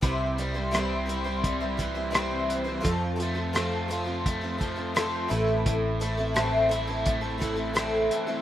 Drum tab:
HH |xxxxxxxx|xxxxxxxx|xxxxxxxx|
SD |--r---r-|--r---r-|--r---r-|
BD |o---oo--|o---oo--|o---oo--|